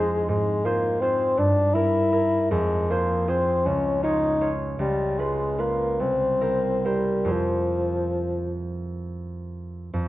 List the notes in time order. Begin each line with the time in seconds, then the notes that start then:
Already playing: F2 G#3 D#4 G#4 C5
0.28 G#2 G#3
0.65 A#3 F4 G#4 C5
1.01 C4 F4 G#4 C5
1.37 G2 D4
1.74 E4 A#4
2.12 E4 A#4
2.51 F2 G#3
2.90 A#3 F4 G#4 C5
3.28 C4 F4 G#4 C5
3.66 C#2 C#4
4.03 D#4 F4 G#4 C#5
4.41 F4 G#4 C#5
4.79 C#2 G3
5.19 G#3 F4 B4
5.58 A#3 F4 B4
6.00 C2 C4
6.41 E4 A#4 C5
6.84 G3 E4 A#4 C5
7.25 F2 F4 G#4 C5
7.31 F3
9.93 F2